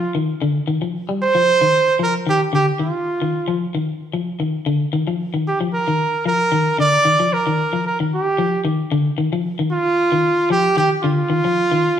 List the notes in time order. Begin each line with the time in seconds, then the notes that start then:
Already playing: F4
0.15 D#3
0.42 D3
0.68 D#3
0.82 F3
1.09 G3
1.23 C5
1.35 F3
1.61 D#3
1.99 F3 A#4
2.27 D#3 G4
2.53 D3 G4
2.79 D#3 F4
3.22 D#3
3.48 F3
3.75 D#3
4.13 F3
4.40 D#3
4.66 D3
4.93 D#3
5.07 F3
5.34 D#3
5.47 G4
5.61 F3
5.74 A#4
5.88 D#3
6.26 F3 A#4
6.52 D#3
6.78 D3 D5
7.05 D#3
7.20 F3
7.33 A#4
7.47 D#3
7.73 F3
7.87 A#4
8.00 D#3
8.14 G4
8.38 F3
8.65 D#3
8.92 D3
9.18 D#3
9.33 F3
9.59 D#3
9.72 F4
10.12 D#3
10.50 F3 G4
10.77 D#3 G4
11.04 D3 F4
11.30 D#3
11.45 F3
11.72 D#3